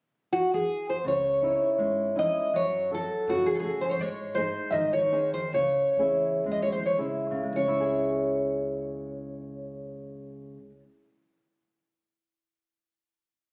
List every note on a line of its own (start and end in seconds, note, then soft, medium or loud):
0.33 0.50 F#4 medium
0.54 0.89 G#4 medium
0.90 1.06 C5 medium
1.04 1.53 C#2 medium
1.04 1.78 C#3 soft
1.04 2.18 C#5 medium
1.42 2.02 C#4 soft
1.42 2.03 D#4 soft
1.42 2.03 E4 soft
1.78 2.04 G#1 medium
1.78 2.52 G#3 soft
2.15 2.46 C#4 soft
2.15 2.46 D#4 soft
2.15 2.46 E4 soft
2.15 2.56 D#5 medium
2.54 3.02 F#2 medium
2.54 3.25 F#3 medium
2.54 2.90 C#5 medium
2.91 3.49 F#4 soft
2.91 3.49 A4 soft
2.91 3.30 A4 medium
3.27 3.51 F#2 medium
3.27 3.98 C#3 medium
3.27 3.47 F#4 medium
3.46 3.53 G#4 medium
3.55 3.59 A4 medium
3.60 3.92 F#4 soft
3.60 3.83 G#4 medium
3.60 3.92 G#4 soft
3.64 3.93 A4 soft
3.81 3.86 C5 medium
3.89 3.99 C5 medium
3.89 3.92 C#5 medium
3.99 4.47 G#2 medium
3.99 4.72 G#3 medium
3.99 4.38 C#5 medium
4.35 4.98 D#4 soft
4.35 4.98 G#4 soft
4.35 4.69 C5 medium
4.35 4.98 C5 soft
4.71 4.98 G#2 medium
4.71 5.51 D#3 medium
4.71 4.92 D#5 medium
4.71 4.74 E5 medium
4.93 5.33 C#5 medium
5.12 5.45 D#4 soft
5.12 5.45 G#4 soft
5.12 5.46 C5 soft
5.34 5.54 C5 medium
5.53 5.82 C#2 medium
5.53 6.43 C#3 medium
5.53 6.43 C#5 medium
5.97 6.40 E2 medium
5.97 6.77 C#4 soft
5.97 6.77 E4 soft
5.97 6.77 G#4 soft
6.44 6.92 D#2 medium
6.44 7.42 G#3 medium
6.51 6.61 D#5 medium
6.62 6.72 C#5 medium
6.72 6.84 C5 medium
6.86 6.97 C#5 medium
6.96 7.49 C#2 medium
6.96 7.43 C#4 soft
6.96 7.43 E4 soft
6.96 7.43 G#4 soft
7.31 10.57 C#3 soft
7.43 10.69 G#3 soft
7.53 10.79 C#2 medium
7.53 10.82 C#4 soft
7.53 10.82 C#5 medium
7.68 10.94 E4 soft
7.80 11.06 G#4 soft